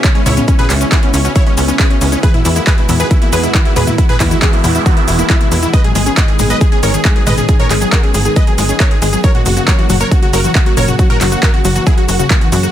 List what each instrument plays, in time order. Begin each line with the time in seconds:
Already playing: analog synth pad C#3 G#3 B3 E4
0.04 synth pluck C#3, supersaw synth C#4, grand piano C#4, kick, clap, closed hi-hat, shaker
0.15 synth pluck G#3, supersaw synth C#4, grand piano C#4, closed hi-hat
0.26 analog synth bass C#2, synth pluck C#4, supersaw synth E4 C#5, grand piano C#5, open hi-hat, mid tom, shaker
0.37 synth pluck B3, supersaw synth C#4, grand piano C#4, closed hi-hat, mid tom, shaker
0.48 supersaw synth C#4, synth pluck C#4, grand piano C#4, kick, closed hi-hat, shaker
0.59 synth pluck F#4, supersaw synth G#4 B4, grand piano B4, closed hi-hat, mid tom
0.70 analog synth bass C#2, synth pluck C#3, supersaw synth C#4, grand piano C#4, clap, open hi-hat, shaker
0.81 synth pluck G#3, grand piano C#4, supersaw synth C#4, closed hi-hat, shaker
0.92 synth pluck C#4, supersaw synth E4 G#4, grand piano G#4, kick, clap, closed hi-hat, shaker
1.03 synth pluck B3, grand piano C#4, supersaw synth C#4, closed hi-hat
1.14 analog synth bass C#2, synth pluck C#4, grand piano C#4, supersaw synth C#4, open hi-hat, shaker
1.25 grand piano C#4, supersaw synth C#4, synth pluck F#4, closed hi-hat, shaker
1.35 synth pluck C#3, supersaw synth E4 C#5, grand piano C#5, kick, closed hi-hat, shaker
1.46 synth pluck G#3, supersaw synth C#4, grand piano C#4, closed hi-hat
1.57 analog synth bass C#2, supersaw synth C#4, grand piano C#4, synth pluck C#4, open hi-hat, shaker
1.68 synth pluck B3, supersaw synth C#4, grand piano C#4, closed hi-hat, shaker
1.79 synth pluck C#4, supersaw synth G#4 B4, grand piano B4, kick, clap, closed hi-hat, shaker
1.90 supersaw synth C#4, grand piano C#4, synth pluck F#4, closed hi-hat
2.01 analog synth bass C#2, synth pluck C#3, supersaw synth C#4, grand piano C#4, open hi-hat, shaker
2.12 synth pluck G#3, supersaw synth C#4, grand piano C#4, closed hi-hat, shaker
2.23 analog synth pad E3 F#4, synth pluck E3, supersaw synth G#4 B4, grand piano B4, kick, closed hi-hat, shaker
2.34 synth pluck D#3, grand piano E4, supersaw synth E4, closed hi-hat, mid tom
2.45 analog synth bass E2, synth pluck E3, supersaw synth E4, grand piano E4, open hi-hat, shaker
2.56 synth pluck A#3, supersaw synth E4, grand piano E4, closed hi-hat, shaker
2.67 supersaw synth G#4 B4, grand piano B4, kick, clap, closed hi-hat, shaker
2.78 synth pluck B2, grand piano E4, supersaw synth E4, closed hi-hat
2.89 analog synth bass E2, synth pluck E3, supersaw synth E4, grand piano E4, open hi-hat, mid tom, shaker
3.00 synth pluck D#3, supersaw synth G#4 B4, grand piano B4, closed hi-hat, shaker
3.11 synth pluck E3, supersaw synth E4, grand piano E4, kick, closed hi-hat, shaker
3.22 synth pluck A#3, supersaw synth E4, grand piano E4, closed hi-hat
3.33 analog synth bass E2, synth pluck E2, supersaw synth G#4 B4, grand piano B4, open hi-hat, shaker
3.43 synth pluck B2, supersaw synth E4, grand piano E4, closed hi-hat, shaker
3.54 synth pluck E3, supersaw synth E4, grand piano E4, kick, clap, closed hi-hat, shaker
3.65 synth pluck D#3, supersaw synth E4, grand piano E4, closed hi-hat
3.76 analog synth bass E2, synth pluck E3, supersaw synth G#4 B4, grand piano B4, open hi-hat, mid tom, shaker
3.87 synth pluck A#3, supersaw synth E4, grand piano E4, closed hi-hat, mid tom, shaker
3.98 synth pluck E2, supersaw synth E4, grand piano E4, kick, closed hi-hat, noise sweep, shaker
4.09 synth pluck B2, supersaw synth G#4 B4, grand piano B4, closed hi-hat, mid tom
4.20 analog synth bass E2, synth pluck E3, supersaw synth E4, grand piano E4, kick, clap, open hi-hat, shaker
4.31 synth pluck D#3, supersaw synth E4, grand piano E4, closed hi-hat, shaker
4.42 synth pluck E3, supersaw synth E4 G#4, grand piano G#4, kick, clap, closed hi-hat, shaker
4.53 synth pluck A#3, grand piano E4, supersaw synth E4, closed hi-hat
4.64 synth pluck E2, analog synth bass E2, supersaw synth E4, grand piano E4, open hi-hat, mid tom, shaker
4.75 synth pluck B2, supersaw synth E4, grand piano E4, closed hi-hat, shaker
4.86 synth pluck E3, supersaw synth D#4 F#4, grand piano F#4, kick, closed hi-hat, shaker
4.97 synth pluck D#3, supersaw synth E4, grand piano E4, closed hi-hat
5.08 analog synth bass E1, synth pluck E3, supersaw synth E4, grand piano E4, open hi-hat, shaker
5.19 synth pluck A#3, supersaw synth E4, grand piano E4, closed hi-hat, shaker
5.30 synth pluck E2, supersaw synth G#3 E4, grand piano E4, kick, clap, closed hi-hat, shaker
5.40 synth pluck B2, supersaw synth E4, grand piano E4, closed hi-hat
5.52 analog synth bass E2, synth pluck E3, supersaw synth E4, grand piano E4, open hi-hat, shaker
5.63 synth pluck D#3, grand piano E4, supersaw synth E4, closed hi-hat, shaker
5.73 analog synth pad D#3 G#4, synth pluck G#3, supersaw synth B4 D#5, grand piano D#5, kick, closed hi-hat, shaker
5.84 synth pluck F#3, supersaw synth G#4, grand piano G#4, closed hi-hat, mid tom
5.95 analog synth bass G#1, synth pluck G#3, supersaw synth G#4, grand piano G#4, open hi-hat, shaker
6.06 synth pluck C#4, supersaw synth G#4, grand piano G#4, closed hi-hat, shaker
6.17 synth pluck G#2, supersaw synth B4 D#5, grand piano D#5, kick, clap, closed hi-hat, shaker
6.28 synth pluck D#3, grand piano G#4, supersaw synth G#4, closed hi-hat
6.39 analog synth bass G#1, synth pluck G#3, grand piano G#4, supersaw synth G#4, open hi-hat, mid tom, shaker
6.50 synth pluck F#3, supersaw synth B4 D#5, grand piano D#5, closed hi-hat, shaker
6.61 synth pluck G#3, grand piano G#4, supersaw synth G#4, kick, closed hi-hat, shaker
6.72 synth pluck C#4, grand piano G#4, supersaw synth G#4, closed hi-hat
6.83 analog synth bass G#1, synth pluck G#2, supersaw synth A#4 C#5, grand piano C#5, open hi-hat, shaker
6.94 synth pluck D#3, grand piano G#4, supersaw synth G#4, closed hi-hat, shaker
7.05 synth pluck G#3, grand piano G#4, supersaw synth G#4, kick, clap, closed hi-hat, shaker
7.16 synth pluck F#3, grand piano G#4, supersaw synth G#4, closed hi-hat
7.26 analog synth bass G#1, synth pluck G#3, supersaw synth B4 D#5, grand piano D#5, open hi-hat, mid tom, shaker
7.38 synth pluck C#4, grand piano G#4, supersaw synth G#4, closed hi-hat, mid tom, shaker
7.49 synth pluck G#2, supersaw synth G#4, kick, closed hi-hat, shaker
7.59 synth pluck D#3, supersaw synth A#4 C#5, grand piano C#5, closed hi-hat, mid tom
7.70 analog synth bass G#1, synth pluck G#3, grand piano G#4, supersaw synth G#4, clap, open hi-hat, shaker
7.81 synth pluck F#3, grand piano G#4, supersaw synth G#4, closed hi-hat, shaker
7.92 synth pluck G#3, supersaw synth F#4 A#4, grand piano A#4, kick, clap, closed hi-hat, shaker
8.03 synth pluck C#4, grand piano G#4, supersaw synth G#4, closed hi-hat
8.14 analog synth bass G#1, synth pluck G#2, grand piano G#4, supersaw synth G#4, open hi-hat, shaker
8.25 synth pluck D#3, grand piano G#4, supersaw synth G#4, closed hi-hat, shaker
8.36 synth pluck G#3, supersaw synth B4 D#5, grand piano D#5, kick, closed hi-hat, shaker
8.47 synth pluck F#3, grand piano G#4, supersaw synth G#4, closed hi-hat
8.58 analog synth bass G#1, synth pluck G#3, grand piano G#4, supersaw synth G#4, open hi-hat, shaker
8.69 synth pluck C#4, supersaw synth G#4, grand piano G#4, closed hi-hat, shaker
8.80 synth pluck G#2, supersaw synth A#4 C#5, grand piano C#5, kick, clap, closed hi-hat, shaker
8.91 synth pluck D#3, supersaw synth G#4, grand piano G#4, closed hi-hat
9.02 analog synth bass G#1, synth pluck G#3, supersaw synth G#4, grand piano G#4, open hi-hat, shaker
9.13 synth pluck F#3, supersaw synth G#4, grand piano G#4, closed hi-hat, shaker
9.24 analog synth pad C#3 F#3 A#3 F#4, synth pluck F#3, supersaw synth A#4 C#5, grand piano C#5, kick, closed hi-hat, shaker
9.35 synth pluck A#3, supersaw synth F#4, grand piano F#4, closed hi-hat, mid tom
9.46 analog synth bass F#1, synth pluck F#2, supersaw synth F#4, grand piano F#4, open hi-hat, shaker
9.57 synth pluck C#3, grand piano F#4, supersaw synth F#4, closed hi-hat, shaker
9.68 synth pluck F#3, supersaw synth A#4 C#5, grand piano C#5, kick, clap, closed hi-hat, shaker
9.79 synth pluck E3, supersaw synth F#4, grand piano F#4, closed hi-hat
9.90 analog synth bass F#1, synth pluck F#3, grand piano F#4, supersaw synth F#4, open hi-hat, mid tom, shaker
10.00 synth pluck A#3, supersaw synth A#4 C#5, grand piano C#5, closed hi-hat, shaker
10.11 synth pluck F#2, grand piano F#4, supersaw synth F#4, kick, closed hi-hat, shaker
10.22 synth pluck C#3, supersaw synth F#4, grand piano F#4, closed hi-hat
10.33 analog synth bass F#1, synth pluck F#3, supersaw synth F#4 A#4, grand piano A#4, open hi-hat, shaker
10.44 synth pluck E3, supersaw synth F#4, grand piano F#4, shaker
10.55 supersaw synth F#4, kick, clap, closed hi-hat, shaker
10.66 synth pluck A#3, supersaw synth F#4, grand piano F#4, closed hi-hat
10.77 analog synth bass F#1, synth pluck F#2, supersaw synth A#4 C#5, grand piano C#5, open hi-hat, mid tom, shaker
10.88 synth pluck C#3, supersaw synth F#4, grand piano F#4, closed hi-hat, mid tom, shaker
10.99 synth pluck F#3, supersaw synth F#4, grand piano F#4, kick, closed hi-hat, shaker
11.10 synth pluck E3, supersaw synth F#4 A#4, grand piano A#4, closed hi-hat, mid tom
11.21 analog synth bass F#1, synth pluck F#3, supersaw synth F#4, grand piano F#4, clap, open hi-hat, shaker
11.32 synth pluck A#3, supersaw synth F#4, grand piano F#4, closed hi-hat, shaker
11.43 synth pluck F#2, supersaw synth F#4 A#4, grand piano A#4, kick, clap, closed hi-hat, shaker
11.54 synth pluck C#3, supersaw synth F#4, grand piano F#4, closed hi-hat
11.65 analog synth bass F#1, synth pluck F#3, supersaw synth F#4, grand piano F#4, open hi-hat, shaker
11.76 synth pluck E3, supersaw synth F#4, grand piano F#4, closed hi-hat, shaker
11.87 synth pluck F#3, supersaw synth E4 G#4, grand piano G#4, kick, closed hi-hat, shaker
11.97 synth pluck A#3, supersaw synth F#4, grand piano F#4, closed hi-hat
12.08 analog synth bass F#1, synth pluck F#2, supersaw synth F#4, grand piano F#4, open hi-hat, shaker
12.19 synth pluck C#3, supersaw synth F#4, grand piano F#4, closed hi-hat, shaker
12.30 synth pluck F#3, supersaw synth A#3 F#4, grand piano F#4, kick, clap, closed hi-hat, shaker
12.41 synth pluck E3, supersaw synth F#4, grand piano F#4, closed hi-hat
12.52 analog synth bass F#2, synth pluck F#3, supersaw synth F#4, grand piano F#4, open hi-hat, shaker
12.63 synth pluck A#3, supersaw synth F#4, grand piano F#4, closed hi-hat, shaker